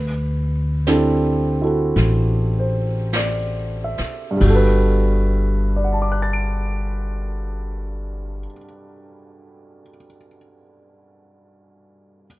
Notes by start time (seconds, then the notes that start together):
Already playing: D2
0.87 C4 D4 E4 G4 A4, snare, hi-hat pedal
1.62 E4 F#4 A4
1.96 A1, brush sweep, snare
2.59 C5
3.13 D5, snare, hi-hat pedal
3.84 E5
3.98 muted upright bass stroke, snare
4.31 G2
4.37 G1 G3
4.41 F#4, kick, ride
4.49 A4
4.55 B4
5.76 D5
5.84 F#5
5.93 A5
6.02 D6
6.12 F#6
6.22 A6
6.33 D7